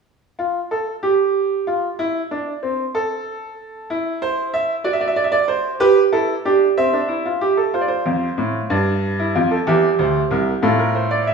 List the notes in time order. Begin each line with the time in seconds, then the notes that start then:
0.39 F4
0.71 A4
1.03 G4
1.67 F4
1.99 E4
2.31 D4
2.63 C4
2.95 A4
3.90 E4
4.22 C5
4.54 E5
4.84 F#4 D5
4.93 E5
5.01 D5
5.08 E5
5.16 D5
5.24 E5
5.32 D5
5.48 C5
5.80 G4 B4
6.12 E4 A4
6.45 D4 G4
6.77 C4 E5
6.93 D4
7.08 E4
7.25 F4
7.41 G4
7.57 A4
7.74 F4 C5
7.81 D5
7.88 C5
8.06 F2
8.38 A2
8.70 G2 D4 D5
9.19 E4
9.35 F2 F4
9.51 A4
9.67 E2 G4 E5
9.99 D2 C5
10.31 C2 A#4
10.62 A2 F4 A4
10.79 A#4
10.95 C5
11.11 D5
11.27 E5